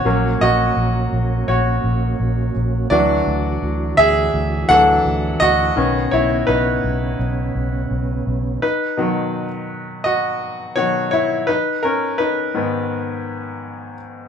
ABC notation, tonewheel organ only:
X:1
M:4/4
L:1/8
Q:1/4=84
K:B
V:1 name="Tonewheel organ" clef=bass
[F,A,C]8 | [=D,E,]8 | [C,B,C]8 | z8 |
z8 |]